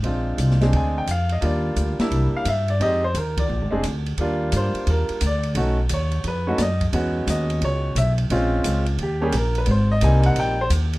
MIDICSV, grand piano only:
0, 0, Header, 1, 2, 480
1, 0, Start_track
1, 0, Key_signature, -3, "major"
1, 0, Tempo, 343840
1, 64, Time_signature, 4, 2, 24, 8
1, 15334, End_track
2, 0, Start_track
2, 0, Title_t, "Grand piano"
2, 0, Program_c, 0, 0
2, 57, Note_on_c, 0, 56, 50
2, 63, Note_on_c, 0, 60, 51
2, 74, Note_on_c, 0, 62, 48
2, 83, Note_on_c, 0, 65, 58
2, 794, Note_off_c, 0, 56, 0
2, 797, Note_off_c, 0, 60, 0
2, 803, Note_off_c, 0, 62, 0
2, 807, Note_off_c, 0, 65, 0
2, 852, Note_on_c, 0, 56, 62
2, 855, Note_on_c, 0, 60, 56
2, 863, Note_on_c, 0, 62, 59
2, 866, Note_on_c, 0, 68, 68
2, 1067, Note_on_c, 0, 80, 74
2, 1353, Note_off_c, 0, 80, 0
2, 1368, Note_on_c, 0, 79, 75
2, 1473, Note_off_c, 0, 56, 0
2, 1474, Note_off_c, 0, 60, 0
2, 1479, Note_off_c, 0, 62, 0
2, 1480, Note_off_c, 0, 68, 0
2, 1518, Note_off_c, 0, 79, 0
2, 1550, Note_on_c, 0, 77, 75
2, 1836, Note_off_c, 0, 77, 0
2, 1848, Note_on_c, 0, 75, 66
2, 1969, Note_on_c, 0, 55, 58
2, 1972, Note_on_c, 0, 58, 52
2, 1981, Note_on_c, 0, 62, 52
2, 1983, Note_on_c, 0, 65, 62
2, 2000, Note_off_c, 0, 75, 0
2, 2022, Note_on_c, 0, 74, 65
2, 2456, Note_off_c, 0, 74, 0
2, 2714, Note_off_c, 0, 55, 0
2, 2715, Note_off_c, 0, 58, 0
2, 2720, Note_off_c, 0, 62, 0
2, 2721, Note_off_c, 0, 65, 0
2, 2779, Note_on_c, 0, 55, 57
2, 2783, Note_on_c, 0, 58, 56
2, 2789, Note_on_c, 0, 62, 57
2, 2799, Note_on_c, 0, 64, 72
2, 3302, Note_on_c, 0, 77, 87
2, 3400, Note_off_c, 0, 55, 0
2, 3402, Note_off_c, 0, 58, 0
2, 3404, Note_off_c, 0, 62, 0
2, 3410, Note_off_c, 0, 64, 0
2, 3449, Note_off_c, 0, 77, 0
2, 3464, Note_on_c, 0, 76, 75
2, 3756, Note_off_c, 0, 76, 0
2, 3768, Note_on_c, 0, 74, 76
2, 3916, Note_on_c, 0, 60, 53
2, 3918, Note_on_c, 0, 63, 54
2, 3919, Note_on_c, 0, 56, 58
2, 3923, Note_off_c, 0, 74, 0
2, 3932, Note_on_c, 0, 67, 64
2, 3939, Note_on_c, 0, 75, 96
2, 4200, Note_off_c, 0, 60, 0
2, 4201, Note_off_c, 0, 56, 0
2, 4201, Note_off_c, 0, 63, 0
2, 4208, Note_off_c, 0, 67, 0
2, 4234, Note_off_c, 0, 75, 0
2, 4248, Note_on_c, 0, 72, 83
2, 4404, Note_off_c, 0, 72, 0
2, 4430, Note_on_c, 0, 70, 64
2, 4720, Note_off_c, 0, 70, 0
2, 4735, Note_on_c, 0, 74, 74
2, 5173, Note_off_c, 0, 74, 0
2, 5174, Note_on_c, 0, 56, 71
2, 5189, Note_on_c, 0, 60, 58
2, 5195, Note_on_c, 0, 62, 68
2, 5198, Note_on_c, 0, 68, 75
2, 5336, Note_off_c, 0, 56, 0
2, 5343, Note_off_c, 0, 60, 0
2, 5346, Note_off_c, 0, 62, 0
2, 5347, Note_off_c, 0, 68, 0
2, 5856, Note_on_c, 0, 55, 58
2, 5870, Note_on_c, 0, 58, 58
2, 5876, Note_on_c, 0, 65, 72
2, 5877, Note_on_c, 0, 62, 55
2, 6373, Note_on_c, 0, 72, 72
2, 6797, Note_off_c, 0, 72, 0
2, 6847, Note_on_c, 0, 70, 64
2, 7191, Note_off_c, 0, 55, 0
2, 7197, Note_off_c, 0, 58, 0
2, 7200, Note_off_c, 0, 65, 0
2, 7201, Note_off_c, 0, 62, 0
2, 7274, Note_off_c, 0, 70, 0
2, 7349, Note_on_c, 0, 74, 86
2, 7621, Note_off_c, 0, 74, 0
2, 7764, Note_on_c, 0, 57, 61
2, 7768, Note_on_c, 0, 61, 56
2, 7772, Note_on_c, 0, 63, 55
2, 7772, Note_on_c, 0, 66, 69
2, 8046, Note_off_c, 0, 57, 0
2, 8048, Note_off_c, 0, 61, 0
2, 8050, Note_off_c, 0, 63, 0
2, 8050, Note_off_c, 0, 66, 0
2, 8287, Note_on_c, 0, 73, 69
2, 8713, Note_off_c, 0, 73, 0
2, 8762, Note_on_c, 0, 71, 76
2, 9033, Note_on_c, 0, 61, 62
2, 9034, Note_on_c, 0, 57, 66
2, 9044, Note_on_c, 0, 63, 66
2, 9051, Note_on_c, 0, 66, 77
2, 9180, Note_on_c, 0, 74, 60
2, 9185, Note_off_c, 0, 57, 0
2, 9185, Note_off_c, 0, 61, 0
2, 9190, Note_off_c, 0, 63, 0
2, 9190, Note_off_c, 0, 71, 0
2, 9194, Note_off_c, 0, 66, 0
2, 9214, Note_off_c, 0, 74, 0
2, 9245, Note_on_c, 0, 75, 81
2, 9528, Note_off_c, 0, 75, 0
2, 9681, Note_on_c, 0, 56, 58
2, 9683, Note_on_c, 0, 61, 59
2, 9686, Note_on_c, 0, 59, 52
2, 9692, Note_on_c, 0, 66, 72
2, 10192, Note_on_c, 0, 75, 74
2, 10624, Note_off_c, 0, 75, 0
2, 10672, Note_on_c, 0, 73, 85
2, 11019, Note_off_c, 0, 56, 0
2, 11020, Note_off_c, 0, 61, 0
2, 11022, Note_off_c, 0, 59, 0
2, 11024, Note_off_c, 0, 66, 0
2, 11103, Note_off_c, 0, 73, 0
2, 11136, Note_on_c, 0, 76, 83
2, 11318, Note_off_c, 0, 76, 0
2, 11599, Note_on_c, 0, 56, 74
2, 11608, Note_on_c, 0, 61, 67
2, 11609, Note_on_c, 0, 60, 70
2, 11618, Note_on_c, 0, 65, 81
2, 12327, Note_off_c, 0, 56, 0
2, 12332, Note_off_c, 0, 60, 0
2, 12332, Note_off_c, 0, 61, 0
2, 12337, Note_off_c, 0, 65, 0
2, 12602, Note_on_c, 0, 67, 69
2, 12847, Note_off_c, 0, 67, 0
2, 12862, Note_on_c, 0, 55, 76
2, 12864, Note_on_c, 0, 58, 73
2, 12868, Note_on_c, 0, 67, 83
2, 12871, Note_on_c, 0, 61, 73
2, 12887, Note_on_c, 0, 68, 76
2, 13015, Note_off_c, 0, 55, 0
2, 13016, Note_off_c, 0, 58, 0
2, 13018, Note_off_c, 0, 67, 0
2, 13019, Note_off_c, 0, 61, 0
2, 13039, Note_off_c, 0, 68, 0
2, 13081, Note_on_c, 0, 70, 70
2, 13361, Note_off_c, 0, 70, 0
2, 13375, Note_on_c, 0, 71, 72
2, 13470, Note_off_c, 0, 71, 0
2, 13491, Note_on_c, 0, 71, 46
2, 13526, Note_off_c, 0, 71, 0
2, 13553, Note_on_c, 0, 72, 67
2, 13836, Note_off_c, 0, 72, 0
2, 13842, Note_on_c, 0, 75, 92
2, 13995, Note_off_c, 0, 75, 0
2, 13996, Note_on_c, 0, 55, 62
2, 14002, Note_on_c, 0, 58, 59
2, 14006, Note_on_c, 0, 60, 62
2, 14011, Note_on_c, 0, 63, 73
2, 14016, Note_on_c, 0, 80, 84
2, 14307, Note_off_c, 0, 80, 0
2, 14323, Note_on_c, 0, 78, 87
2, 14475, Note_off_c, 0, 78, 0
2, 14513, Note_on_c, 0, 79, 97
2, 14721, Note_off_c, 0, 55, 0
2, 14725, Note_off_c, 0, 58, 0
2, 14727, Note_off_c, 0, 60, 0
2, 14729, Note_off_c, 0, 63, 0
2, 14794, Note_off_c, 0, 79, 0
2, 14813, Note_on_c, 0, 72, 91
2, 14904, Note_off_c, 0, 72, 0
2, 15334, End_track
0, 0, End_of_file